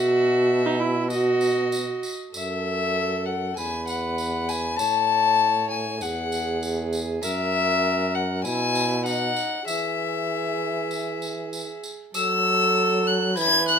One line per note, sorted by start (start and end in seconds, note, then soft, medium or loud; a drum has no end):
0.00 1.99 B2 medium
0.00 0.68 F#4 loud
0.00 1.08 E5 medium
0.66 0.81 D#4 medium
0.80 1.10 E4 medium
1.10 2.02 F#4 medium
1.10 2.12 D#5 medium
1.10 tambourine soft
1.41 tambourine medium
1.72 tambourine medium
2.03 tambourine medium
2.34 3.53 F#2 medium
2.34 3.59 A4 medium
2.34 3.27 E5 medium
2.34 tambourine medium
3.26 3.56 F#5 medium
3.56 4.77 E2 medium
3.56 4.81 B4 medium
3.56 3.87 G#5 medium
3.56 tambourine soft
3.87 4.51 F#5 medium
3.87 tambourine soft
4.18 tambourine soft
4.49 4.78 G#5 medium
4.49 tambourine soft
4.79 6.04 A2 medium
4.79 6.01 C#5 medium
4.79 5.69 A5 loud
4.79 tambourine medium
5.71 6.03 G#5 medium
6.01 7.23 E2 medium
6.01 7.25 G#4 medium
6.01 6.93 F#5 medium
6.01 tambourine soft
6.32 tambourine medium
6.63 tambourine medium
6.93 tambourine soft
7.22 8.47 F#2 medium
7.22 8.45 A#4 medium
7.22 8.16 E5 loud
7.22 tambourine medium
8.15 8.44 F#5 medium
8.44 9.40 B2 medium
8.44 9.08 E4 medium
8.44 9.05 G#5 loud
8.44 tambourine soft
8.75 tambourine soft
9.06 9.67 D#4 medium
9.06 9.66 F#5 medium
9.06 tambourine medium
9.36 tambourine soft
9.68 11.80 E3 medium
9.68 11.90 G#4 medium
9.68 11.80 E5 medium
9.68 tambourine medium
10.91 tambourine soft
11.22 tambourine soft
11.53 tambourine medium
11.84 tambourine soft
12.14 13.39 F#3 medium
12.14 13.33 A4 medium
12.14 13.08 E6 loud
12.14 tambourine medium
13.07 13.37 F#6 medium
13.37 13.79 E3 medium
13.37 13.79 B4 medium
13.37 13.68 G#6 loud
13.37 tambourine soft
13.68 13.79 F#6 loud
13.68 tambourine soft